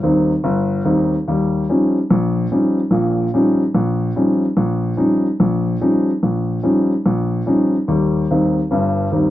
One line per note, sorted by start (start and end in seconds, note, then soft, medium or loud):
0.03 0.31 D#2 medium
0.03 0.31 G3 soft
0.03 0.31 C4 medium
0.03 0.31 D#4 medium
0.44 0.79 G1 medium
0.85 1.13 D#2 medium
0.85 1.13 G3 soft
0.85 1.13 C4 soft
0.85 1.13 D#4 medium
1.28 1.63 D#2 medium
1.28 1.63 G3 medium
1.69 1.96 F3 medium
1.69 1.97 G3 soft
1.69 1.97 C#4 soft
1.69 1.97 D#4 medium
2.10 2.45 A#1 medium
2.52 2.79 F3 soft
2.52 2.79 G3 soft
2.52 2.79 C#4 soft
2.52 2.79 D#4 soft
2.91 3.27 A#1 medium
2.91 3.27 A#2 medium
3.34 3.61 F3 medium
3.34 3.62 G3 soft
3.34 3.61 C#4 medium
3.34 3.62 D#4 medium
3.75 4.10 A#1 medium
4.16 4.44 F3 medium
4.16 4.44 G3 soft
4.16 4.44 C#4 soft
4.16 4.44 D#4 soft
4.57 4.92 A#1 medium
4.97 5.25 F3 medium
4.97 5.26 G3 soft
4.97 5.26 C#4 soft
4.97 5.26 D#4 medium
5.40 5.75 A#1 medium
5.81 6.09 F3 medium
5.81 6.09 G3 soft
5.81 6.09 C#4 soft
5.81 6.09 D#4 medium
6.23 6.58 A#1 medium
6.63 6.91 F3 medium
6.63 6.92 G3 soft
6.63 6.91 C#4 soft
6.63 6.92 D#4 soft
7.06 7.41 A#1 medium
7.46 7.74 F3 soft
7.46 7.75 G3 soft
7.46 7.75 C#4 soft
7.46 7.75 D#4 medium
7.88 8.23 D#2 medium
7.88 8.24 G3 medium
8.30 8.58 D#2 medium
8.30 8.58 G3 soft
8.30 8.58 C4 soft
8.30 8.58 D#4 medium
8.71 9.06 G1 medium
8.71 9.06 G2 medium
9.12 9.30 D#2 soft
9.12 9.30 G3 soft
9.12 9.30 C4 soft
9.12 9.30 D#4 soft